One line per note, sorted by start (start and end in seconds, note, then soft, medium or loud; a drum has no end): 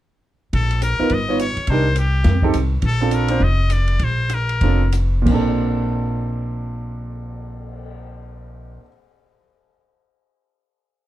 0.53 0.96 A#1 medium
0.53 0.81 A4 medium
0.53 kick soft
0.53 ride soft
0.71 ride soft
0.82 1.15 A#4 medium
0.82 hi-hat pedal soft
0.82 ride medium
0.99 1.10 B3 medium
0.99 1.10 D#4 soft
0.99 1.10 F4 soft
0.99 1.10 A#4 medium
0.99 muted upright bass stroke soft
1.10 1.54 G1 medium
1.10 1.40 D#5 medium
1.10 kick soft
1.10 ride soft
1.29 1.39 B3 medium
1.29 1.39 D#4 soft
1.29 1.39 F4 soft
1.29 1.39 C#5 medium
1.39 1.71 C#5 medium
1.39 hi-hat pedal soft
1.39 ride medium
1.56 muted upright bass stroke soft
1.56 ride soft
1.67 2.23 C2 medium
1.67 1.85 D4 medium
1.67 1.85 D#4 soft
1.67 1.86 G4 soft
1.67 1.98 C5 medium
1.67 kick soft
1.67 ride medium
1.71 1.86 A#4 medium
1.96 2.51 G4 medium
1.96 hi-hat pedal soft
1.96 ride soft
2.24 2.52 F2 medium
2.24 kick soft
2.24 snare soft
2.24 ride medium
2.42 2.53 C4 medium
2.42 2.53 D#4 medium
2.42 2.54 G4 medium
2.42 2.54 A4 medium
2.42 kick soft
2.54 2.81 C2 medium
2.54 hi-hat pedal soft
2.54 ride medium
2.82 3.38 A#1 medium
2.82 kick soft
2.82 ride medium
2.87 3.16 A4 medium
3.01 3.27 C4 medium
3.01 3.28 D4 medium
3.01 3.28 F4 medium
3.01 3.29 A4 medium
3.11 3.45 A#4 medium
3.11 hi-hat pedal medium
3.11 ride medium
3.28 3.39 C4 medium
3.28 3.40 D4 medium
3.28 3.40 F4 soft
3.28 3.41 C5 medium
3.28 ride medium
3.40 3.97 F1 medium
3.40 3.74 D#5 loud
3.40 kick soft
3.70 4.06 D5 medium
3.70 hi-hat pedal medium
3.70 ride medium
3.88 ride soft
3.99 4.58 A#1 medium
3.99 kick soft
3.99 ride soft
4.04 4.36 C5 medium
4.29 hi-hat pedal soft
4.29 ride medium
4.34 4.96 A#4 medium
4.49 ride soft
4.61 5.23 F1 medium
4.61 4.80 C4 medium
4.61 4.80 D4 soft
4.61 4.80 F4 soft
4.61 4.80 A4 medium
4.61 kick soft
4.61 ride medium
4.92 hi-hat pedal medium
4.92 ride medium
5.22 8.76 A#2 medium
5.22 8.80 A#3 medium
5.26 8.76 A#1 medium
5.26 8.82 C4 soft
5.26 kick soft
5.26 crash medium
5.31 8.86 D4 medium
5.31 8.89 A4 medium
5.46 cymbal swell soft